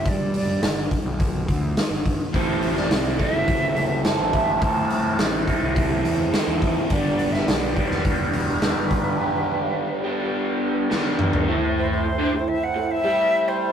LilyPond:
<<
  \new Staff \with { instrumentName = "Flute" } { \time 4/4 \key a \minor \tempo 4 = 105 d''8 d''4 r2 r8 | c''8. d''8. e''4. r8 e''8 | a''4 r2. | d''8. e''16 d''8. c''16 b'2~ |
b'2. r4 | r8 c''16 c''4 e''16 fis''8 e''4 c''8 | }
  \new Staff \with { instrumentName = "Tonewheel organ" } { \time 4/4 \key a \minor r1 | <a c' e' a' c''>1~ | <a c' e' a' c''>1 | <g b d' g' b'>1~ |
<g b d' g' b'>1 | <a c' e' a' c''>1 | }
  \new Staff \with { instrumentName = "Overdriven electric guitar" } { \time 4/4 \key a \minor r1 | <a, e c' e' a'>4. <a, e c' e' a'>4. <a, e c' e' a'>4 | <a, e c' e' a'>4. <a, e c' e' a'>4. <a, e c' e' a'>4 | <g, d g b d' g'>4. <g, d g b d' g'>4. <g, d g b d' g'>4 |
<g, d g b d' g'>4. <g, d g b d' g'>4. <g, d g b d' g'>4 | <a, a>4 a,16 <d d'>16 a,8 r16 a,8 <g g'>4~ <g g'>16 | }
  \new Staff \with { instrumentName = "Picked electric bass" } { \clef bass \time 4/4 \key a \minor g,4 g,,8 r16 b,,8. d,8 r16 g,,8 r16 | a,,4 c,8 r16 fis,,8. fis,,8. a,,8. | a,4 a,,8 r16 c,8. e,8 r16 e,8 r16 | g,,4 b,,8 r16 e,,8. e,,8. g,,8. |
r1 | r1 | }
  \new DrumStaff \with { instrumentName = "Drums" } \drummode { \time 4/4 <hho bd>8 hho8 <hho sn>8 <hho bd>8 <hho bd>8 <hho bd>8 <hho sn>8 <hho bd>8 | <hho bd>8 hho16 sn16 <hho sn>8 <hho bd>8 <hho bd>8 hho8 <hho sn>8 <hho bd>8 | <hho bd>8 hho8 <hho sn>8 <hho bd>8 <hho bd>8 hho8 <hho sn>8 <hho bd>8 | <hho bd>8 hho16 sn16 <hho sn>8 <hho bd>16 sn16 <hho bd>8 hho8 <hho sn>8 <hho bd>8 |
r4 r4 r4 sn8 toml16 tomfh16 | r4 r4 r4 r4 | }
>>